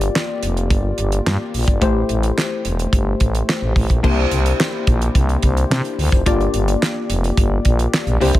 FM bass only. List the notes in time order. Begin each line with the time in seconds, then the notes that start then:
0.43 F1
0.70 G1
0.98 G1
1.26 G2
1.54 A#1
1.68 G1
1.82 A1
2.10 A1
2.65 E1
2.93 G1
3.21 A1
3.62 A1
3.76 A1
3.90 A#1
4.04 C2
4.31 C2
4.87 A#1
5.15 C2
5.43 C2
5.70 C3
5.98 D2
6.12 F1
6.26 G1
6.54 G1
7.10 F1
7.38 G1
7.65 A#1
8.07 A#1
8.21 C2
8.35 A#1